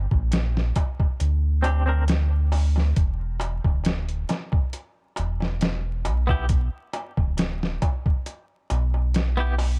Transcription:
0.11 A#1, kick, darbuka tek
0.32 snare, closed hi-hat, darbuka tek
0.57 snare
0.76 kick, closed hi-hat, darbuka tek
1.00 kick, darbuka tek
1.20 D2, closed hi-hat, darbuka tek
1.62 C4 D4 G4, closed hi-hat, darbuka tek
1.86 C4 D4 A#4, darbuka tek
2.08 snare, closed hi-hat, darbuka tek
2.52 open hi-hat, darbuka tek
2.76 snare, darbuka tek
2.96 E1, kick, closed hi-hat, darbuka tek
3.40 closed hi-hat, darbuka tek
3.64 D1, kick, darbuka tek
3.84 snare, closed hi-hat, darbuka tek
4.09 closed hi-hat
4.29 snare, closed hi-hat, darbuka tek
4.52 kick, darbuka tek
4.73 closed hi-hat, darbuka tek
5.16 E1, closed hi-hat, darbuka tek
5.41 snare, darbuka tek
5.61 snare, closed hi-hat, darbuka tek
6.05 B1, closed hi-hat, darbuka tek
6.27 B3 E4 G4, kick, darbuka tek
6.49 kick, closed hi-hat, darbuka tek
6.93 closed hi-hat, darbuka tek
7.17 D1, kick, darbuka tek
7.37 snare, closed hi-hat, darbuka tek
7.63 snare
7.82 kick, closed hi-hat, darbuka tek
8.06 kick, darbuka tek
8.26 closed hi-hat, darbuka tek
8.70 B1, closed hi-hat, darbuka tek
8.94 darbuka tek
9.14 snare, closed hi-hat, darbuka tek
9.37 B3 E4 G4
9.58 open hi-hat, darbuka tek

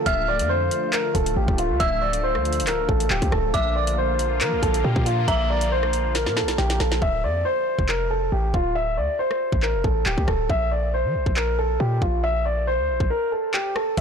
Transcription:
Already playing: D3 F3 F4
0.06 D1 A3 E5 F6, kick, closed hi-hat
0.28 D5
0.39 F2, closed hi-hat
0.49 C5
0.71 closed hi-hat
0.93 A#4, clap, closed hi-hat
1.15 D1 A4, kick, closed hi-hat
1.26 closed hi-hat
1.37 A1 G4
1.48 D1, kick
1.58 F4, closed hi-hat
1.70 D2
1.80 D1 E5 E6, kick, closed hi-hat
2.02 D5
2.13 closed hi-hat
2.23 C5
2.35 D2, cross-stick
2.45 closed hi-hat
2.53 closed hi-hat
2.60 D1, closed hi-hat
2.67 A#4, clap, closed hi-hat
2.89 A1 A4, kick
3.00 closed hi-hat
3.10 D1 G4, clap
3.22 D2, kick, closed hi-hat
3.32 D1 A4, kick, cross-stick
3.54 A#1 D3 F3 A#3 F4 E5 D6, kick, closed hi-hat
3.76 D5
3.87 closed hi-hat
3.98 C5
4.19 closed hi-hat
4.41 F3 A#4, clap, closed hi-hat
4.52 A#1
4.63 A#1 A4, kick, closed hi-hat
4.74 closed hi-hat
4.84 A#2 G4
4.96 A#2, kick
5.06 F4, closed hi-hat
5.28 A#1 E5 A#5, kick, closed hi-hat
5.50 D5
5.61 closed hi-hat
5.72 C5
5.83 cross-stick
5.93 closed hi-hat
6.15 A#4, snare, closed hi-hat
6.26 A#2, snare
6.36 A4, snare
6.42 A#1
6.48 snare, closed hi-hat
6.58 A#1 G4, snare
6.70 snare, closed hi-hat
6.80 A#1 A4, snare
6.92 snare
7.02 D1 E5, kick
7.24 F2 D5
7.45 C5
7.79 F1, kick
7.89 A#4, clap
8.11 A4
8.32 A1 G4
8.54 D1 F4, kick
8.75 E5
8.97 D2 D5
9.19 C5
9.31 cross-stick
9.52 A1, kick
9.63 A#4, clap
9.74 F1
9.84 A1 A4, kick
10.06 D1 G4, clap
10.18 D2, kick
10.28 D1 A4, kick, cross-stick
10.50 A#1 E5, kick
10.71 D5
10.94 C5
11.05 F3
11.15 A#1
11.26 A#1, kick
11.37 A#4, clap
11.59 A4
11.80 A#2 G4
12.02 A#1 F4, kick
12.24 E5
12.45 D5
12.67 C5
12.79 D2
12.89 A#1
13.00 A#1, kick
13.10 A#4
13.32 A4
13.54 G4, clap
13.76 A4, cross-stick
13.97 D1 E5, kick, closed hi-hat

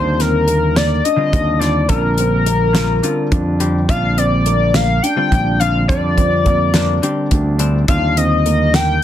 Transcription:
Already playing: D#2 D3 G3 C4 D4 F4 C5
0.19 C4 A#4, snare, closed hi-hat
0.47 A#3, closed hi-hat
0.76 A#3 D5, snare, closed hi-hat
1.04 D4 D#5, closed hi-hat
1.16 D3 G3 C4 F4
1.33 D#2 D4, kick, closed hi-hat
1.59 D3 G3 C4 F4 D5, snare, closed hi-hat
1.88 A#1 D3 G3 C4 D4 F4 A#4, kick, closed hi-hat
2.18 C4, closed hi-hat
2.46 A#3, closed hi-hat
2.73 D3 G3 A#3 C4 F4, snare, closed hi-hat
3.03 D3 G3 C4 D4 F4, closed hi-hat
3.32 F2 D4, kick, closed hi-hat
3.60 D3 G3 C4 G4, closed hi-hat
3.88 A#1 D3 G3 C4 D4 F4 F5, kick, closed hi-hat
4.18 C4 D5, closed hi-hat
4.46 A#3, closed hi-hat
4.74 A#3 F5, snare, closed hi-hat
5.02 D4 G5, closed hi-hat
5.16 D3 G3 C4 F4
5.32 A#1 D4, kick, closed hi-hat
5.60 D3 G3 C4 F4 F5, closed hi-hat
5.88 F2 D3 G3 C4 D4 F4 D5, kick, closed hi-hat
6.17 C4, kick, closed hi-hat
6.45 A#3, kick, closed hi-hat
6.74 D3 G3 A#3 C4 D4, snare, closed hi-hat
7.02 D3 G3 C4 D4 G4, closed hi-hat
7.31 D2 D4, kick, closed hi-hat
7.59 D3 G3 C4 D4, closed hi-hat
7.88 D#2 D3 G3 C4 D4 F4 F5, kick, closed hi-hat
8.17 C4 D#5, closed hi-hat
8.46 A#3, closed hi-hat
8.74 A#3 G5, snare, closed hi-hat

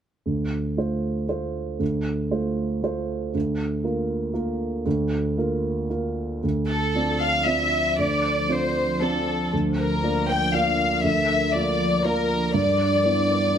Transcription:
0.26 D2
0.77 A3 F4 C5
1.29 A3 F4 C5
1.79 D2
2.31 A3 F4 C5
2.83 A3 F4 C5
3.34 D2
3.84 A#3 F4 A#4
4.34 A#3 F4 A#4
4.86 D2
5.38 A#3 F4 A#4
5.90 A#3 F4 A#4
6.42 D2 F3 D4 C5
6.69 A4
6.95 C4 F4 D5
7.19 F5
7.45 C4 F4 D5 E5
7.98 D2 D5
8.49 C4 F4 C5 D5
9.01 C4 F4 A4 D5
9.53 D2 A#4
9.78 A#4
10.03 A#3 F4 D5
10.28 G5
10.52 A#3 F4 D5 F5
11.03 D2 E5
11.53 A#3 F4 D5
12.04 A#3 F4 A#4 D5
12.54 G2 E3 D4 B4 D5
13.05 B3 E4 D5

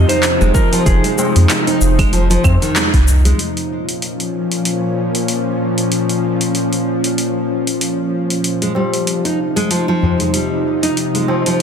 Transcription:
Already playing: C3 F3 D#4 D#5
0.09 D#4 C5, open hi-hat, shaker
0.23 clap, open hi-hat, shaker
0.41 F1 G#3, shaker
0.54 F3 A#4, kick, shaker
0.72 F3, open hi-hat, tabla na, tabla tin, shaker
0.86 F1 G#4, kick, open hi-hat, shaker
1.04 G#3, open hi-hat, shaker
1.18 G#3, tabla na, shaker
1.36 F2, open hi-hat, shaker
1.50 clap, open hi-hat, shaker
1.67 D#4, open hi-hat, tabla tin, shaker
1.81 F1, tabla na, shaker
1.99 G#3, kick, open hi-hat, claves, shaker
2.12 F1 F3, open hi-hat, tabla tin, shaker
2.30 F3, open hi-hat, tabla tin, shaker
2.44 F2 C3, kick, tabla na, tabla ge, claves, shaker
2.62 D#3, open hi-hat, shaker
2.76 G#3, clap, open hi-hat, shaker
2.94 C2, kick, open hi-hat, shaker
3.08 tabla ge, shaker
3.25 G#3, open hi-hat, shaker
3.39 A#2 F3 C#4, open hi-hat
3.57 open hi-hat
3.89 open hi-hat
4.02 open hi-hat
4.20 open hi-hat
4.52 open hi-hat
4.65 open hi-hat
5.15 open hi-hat
5.28 open hi-hat
5.78 open hi-hat
5.92 open hi-hat
6.09 open hi-hat
6.41 open hi-hat
6.55 open hi-hat
6.73 open hi-hat
7.04 open hi-hat
7.18 open hi-hat
7.67 open hi-hat
7.81 open hi-hat
8.30 open hi-hat
8.44 C3 D#4, open hi-hat
8.62 G#3, open hi-hat
8.75 G3, tabla na
8.94 open hi-hat
9.07 open hi-hat
9.25 D#4, open hi-hat
9.56 G#3, open hi-hat
9.70 F3, open hi-hat
9.88 F3
10.03 tabla tin, tabla ge
10.20 G#3, open hi-hat, tabla tin
10.33 G3, open hi-hat
10.52 tabla tin
10.83 D#4, open hi-hat
10.97 open hi-hat
11.15 G#3, open hi-hat
11.28 F3, tabla na, tabla tin
11.46 F3, open hi-hat, tabla tin

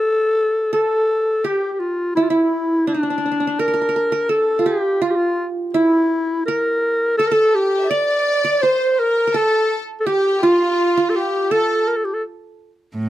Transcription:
Already playing: A4
0.73 A4
1.44 G4
1.73 G4
1.80 F4
2.15 E4
2.23 F4
2.29 E4
2.87 D4
2.94 D4
3.03 D4
3.10 D4
3.18 D4
3.26 D4
3.32 D4
3.40 D4
3.47 D4
3.59 A#4
3.68 A#4
3.74 A#4
3.81 A#4
3.89 A#4
3.96 A#4
4.12 A#4
4.29 A4
4.59 F4
4.66 G4
5.02 F4
5.11 G4
5.16 F4
5.74 E4
6.46 A#4
7.18 A4
7.27 A#4
7.32 A4
7.55 G4
7.83 E5
7.90 D5
8.45 D5
8.62 C5
8.92 C5
8.99 A#4
9.27 A#4
9.34 A4
10.00 A4
10.06 G4
10.43 F4
10.97 F4
11.09 A4
11.16 G4
11.51 A4
11.87 A#4
11.96 A4
12.04 G4
12.14 A4
12.97 A2

